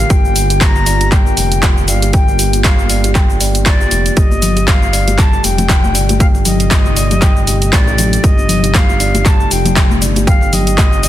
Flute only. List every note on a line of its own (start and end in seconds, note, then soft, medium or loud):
0.00 0.12 F5 loud
0.11 0.63 G5 loud
0.61 1.14 A#5 loud
1.13 1.90 G5 loud
1.89 2.14 F5 medium
2.14 2.61 G5 loud
2.65 3.12 F5 medium
3.66 4.18 D5 medium
4.17 4.69 D#5 loud
4.67 5.20 F5 loud
5.18 5.45 A5 loud
5.44 6.19 G5 loud
6.20 6.26 F5 loud
6.46 7.74 D#5 loud
7.73 8.25 D5 medium
8.24 8.76 D#5 loud
8.75 9.27 F5 loud
9.26 9.53 A5 loud
9.51 10.01 G5 medium
10.28 10.55 F5 loud
10.53 11.09 D#5 loud